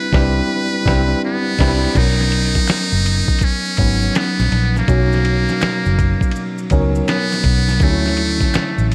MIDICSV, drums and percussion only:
0, 0, Header, 1, 2, 480
1, 0, Start_track
1, 0, Key_signature, 5, "major"
1, 0, Tempo, 731707
1, 1284, Time_signature, 4, 2, 24, 8
1, 5871, End_track
2, 0, Start_track
2, 0, Title_t, "Drums"
2, 83, Note_on_c, 9, 36, 109
2, 94, Note_on_c, 9, 38, 115
2, 149, Note_off_c, 9, 36, 0
2, 160, Note_off_c, 9, 38, 0
2, 563, Note_on_c, 9, 36, 111
2, 574, Note_on_c, 9, 38, 107
2, 629, Note_off_c, 9, 36, 0
2, 640, Note_off_c, 9, 38, 0
2, 1040, Note_on_c, 9, 49, 79
2, 1042, Note_on_c, 9, 36, 103
2, 1052, Note_on_c, 9, 38, 113
2, 1105, Note_off_c, 9, 49, 0
2, 1108, Note_off_c, 9, 36, 0
2, 1118, Note_off_c, 9, 38, 0
2, 1281, Note_on_c, 9, 36, 117
2, 1281, Note_on_c, 9, 49, 99
2, 1281, Note_on_c, 9, 51, 75
2, 1285, Note_on_c, 9, 82, 66
2, 1346, Note_off_c, 9, 36, 0
2, 1346, Note_off_c, 9, 49, 0
2, 1347, Note_off_c, 9, 51, 0
2, 1351, Note_off_c, 9, 82, 0
2, 1438, Note_on_c, 9, 82, 47
2, 1450, Note_on_c, 9, 38, 42
2, 1504, Note_off_c, 9, 82, 0
2, 1516, Note_off_c, 9, 38, 0
2, 1521, Note_on_c, 9, 51, 59
2, 1587, Note_off_c, 9, 51, 0
2, 1672, Note_on_c, 9, 82, 53
2, 1675, Note_on_c, 9, 36, 85
2, 1682, Note_on_c, 9, 38, 32
2, 1738, Note_off_c, 9, 82, 0
2, 1740, Note_off_c, 9, 36, 0
2, 1747, Note_off_c, 9, 38, 0
2, 1755, Note_on_c, 9, 26, 74
2, 1755, Note_on_c, 9, 82, 76
2, 1762, Note_on_c, 9, 51, 68
2, 1769, Note_on_c, 9, 38, 111
2, 1820, Note_off_c, 9, 26, 0
2, 1820, Note_off_c, 9, 82, 0
2, 1828, Note_off_c, 9, 51, 0
2, 1835, Note_off_c, 9, 38, 0
2, 1914, Note_on_c, 9, 82, 47
2, 1979, Note_off_c, 9, 82, 0
2, 2005, Note_on_c, 9, 82, 52
2, 2007, Note_on_c, 9, 51, 56
2, 2070, Note_off_c, 9, 82, 0
2, 2072, Note_off_c, 9, 51, 0
2, 2153, Note_on_c, 9, 36, 94
2, 2156, Note_on_c, 9, 82, 50
2, 2218, Note_off_c, 9, 36, 0
2, 2221, Note_on_c, 9, 51, 77
2, 2222, Note_off_c, 9, 82, 0
2, 2240, Note_on_c, 9, 36, 98
2, 2243, Note_on_c, 9, 82, 75
2, 2287, Note_off_c, 9, 51, 0
2, 2305, Note_off_c, 9, 36, 0
2, 2309, Note_off_c, 9, 82, 0
2, 2394, Note_on_c, 9, 82, 56
2, 2460, Note_off_c, 9, 82, 0
2, 2474, Note_on_c, 9, 51, 58
2, 2478, Note_on_c, 9, 82, 40
2, 2482, Note_on_c, 9, 36, 91
2, 2539, Note_off_c, 9, 51, 0
2, 2543, Note_off_c, 9, 82, 0
2, 2547, Note_off_c, 9, 36, 0
2, 2637, Note_on_c, 9, 82, 57
2, 2703, Note_off_c, 9, 82, 0
2, 2724, Note_on_c, 9, 51, 82
2, 2726, Note_on_c, 9, 26, 73
2, 2726, Note_on_c, 9, 82, 70
2, 2730, Note_on_c, 9, 38, 116
2, 2789, Note_off_c, 9, 51, 0
2, 2792, Note_off_c, 9, 26, 0
2, 2792, Note_off_c, 9, 82, 0
2, 2795, Note_off_c, 9, 38, 0
2, 2883, Note_on_c, 9, 82, 49
2, 2884, Note_on_c, 9, 38, 37
2, 2948, Note_off_c, 9, 82, 0
2, 2950, Note_off_c, 9, 38, 0
2, 2965, Note_on_c, 9, 51, 55
2, 3031, Note_off_c, 9, 51, 0
2, 3126, Note_on_c, 9, 38, 41
2, 3126, Note_on_c, 9, 82, 50
2, 3191, Note_off_c, 9, 82, 0
2, 3192, Note_off_c, 9, 38, 0
2, 3202, Note_on_c, 9, 36, 120
2, 3202, Note_on_c, 9, 51, 77
2, 3208, Note_on_c, 9, 82, 69
2, 3267, Note_off_c, 9, 36, 0
2, 3267, Note_off_c, 9, 51, 0
2, 3273, Note_off_c, 9, 82, 0
2, 3361, Note_on_c, 9, 82, 49
2, 3372, Note_on_c, 9, 38, 41
2, 3427, Note_off_c, 9, 82, 0
2, 3438, Note_off_c, 9, 38, 0
2, 3443, Note_on_c, 9, 51, 61
2, 3508, Note_off_c, 9, 51, 0
2, 3598, Note_on_c, 9, 82, 55
2, 3603, Note_on_c, 9, 38, 33
2, 3664, Note_off_c, 9, 82, 0
2, 3669, Note_off_c, 9, 38, 0
2, 3683, Note_on_c, 9, 26, 72
2, 3683, Note_on_c, 9, 82, 74
2, 3684, Note_on_c, 9, 51, 70
2, 3691, Note_on_c, 9, 38, 110
2, 3748, Note_off_c, 9, 26, 0
2, 3748, Note_off_c, 9, 82, 0
2, 3750, Note_off_c, 9, 51, 0
2, 3757, Note_off_c, 9, 38, 0
2, 3841, Note_on_c, 9, 82, 49
2, 3906, Note_off_c, 9, 82, 0
2, 3927, Note_on_c, 9, 36, 97
2, 3927, Note_on_c, 9, 51, 57
2, 3932, Note_on_c, 9, 82, 49
2, 3992, Note_off_c, 9, 36, 0
2, 3993, Note_off_c, 9, 51, 0
2, 3998, Note_off_c, 9, 82, 0
2, 4074, Note_on_c, 9, 36, 88
2, 4083, Note_on_c, 9, 82, 51
2, 4140, Note_off_c, 9, 36, 0
2, 4142, Note_on_c, 9, 51, 75
2, 4148, Note_off_c, 9, 82, 0
2, 4171, Note_on_c, 9, 82, 72
2, 4208, Note_off_c, 9, 51, 0
2, 4237, Note_off_c, 9, 82, 0
2, 4317, Note_on_c, 9, 82, 50
2, 4383, Note_off_c, 9, 82, 0
2, 4395, Note_on_c, 9, 51, 58
2, 4402, Note_on_c, 9, 36, 90
2, 4404, Note_on_c, 9, 82, 45
2, 4461, Note_off_c, 9, 51, 0
2, 4468, Note_off_c, 9, 36, 0
2, 4469, Note_off_c, 9, 82, 0
2, 4561, Note_on_c, 9, 82, 62
2, 4627, Note_off_c, 9, 82, 0
2, 4644, Note_on_c, 9, 26, 72
2, 4644, Note_on_c, 9, 82, 71
2, 4645, Note_on_c, 9, 51, 77
2, 4651, Note_on_c, 9, 38, 117
2, 4709, Note_off_c, 9, 26, 0
2, 4709, Note_off_c, 9, 82, 0
2, 4710, Note_off_c, 9, 51, 0
2, 4717, Note_off_c, 9, 38, 0
2, 4802, Note_on_c, 9, 82, 51
2, 4804, Note_on_c, 9, 38, 35
2, 4868, Note_off_c, 9, 82, 0
2, 4870, Note_off_c, 9, 38, 0
2, 4880, Note_on_c, 9, 36, 105
2, 4882, Note_on_c, 9, 51, 54
2, 4946, Note_off_c, 9, 36, 0
2, 4948, Note_off_c, 9, 51, 0
2, 5043, Note_on_c, 9, 38, 41
2, 5043, Note_on_c, 9, 82, 53
2, 5108, Note_off_c, 9, 82, 0
2, 5109, Note_off_c, 9, 38, 0
2, 5116, Note_on_c, 9, 51, 73
2, 5119, Note_on_c, 9, 36, 118
2, 5125, Note_on_c, 9, 82, 66
2, 5182, Note_off_c, 9, 51, 0
2, 5185, Note_off_c, 9, 36, 0
2, 5190, Note_off_c, 9, 82, 0
2, 5280, Note_on_c, 9, 82, 44
2, 5287, Note_on_c, 9, 38, 42
2, 5346, Note_off_c, 9, 82, 0
2, 5352, Note_off_c, 9, 38, 0
2, 5359, Note_on_c, 9, 51, 62
2, 5424, Note_off_c, 9, 51, 0
2, 5514, Note_on_c, 9, 36, 90
2, 5515, Note_on_c, 9, 82, 56
2, 5522, Note_on_c, 9, 38, 34
2, 5580, Note_off_c, 9, 36, 0
2, 5580, Note_off_c, 9, 82, 0
2, 5587, Note_off_c, 9, 38, 0
2, 5602, Note_on_c, 9, 26, 78
2, 5602, Note_on_c, 9, 82, 75
2, 5604, Note_on_c, 9, 51, 70
2, 5611, Note_on_c, 9, 38, 108
2, 5668, Note_off_c, 9, 26, 0
2, 5668, Note_off_c, 9, 82, 0
2, 5670, Note_off_c, 9, 51, 0
2, 5677, Note_off_c, 9, 38, 0
2, 5761, Note_on_c, 9, 82, 48
2, 5827, Note_off_c, 9, 82, 0
2, 5849, Note_on_c, 9, 51, 55
2, 5850, Note_on_c, 9, 82, 50
2, 5871, Note_off_c, 9, 51, 0
2, 5871, Note_off_c, 9, 82, 0
2, 5871, End_track
0, 0, End_of_file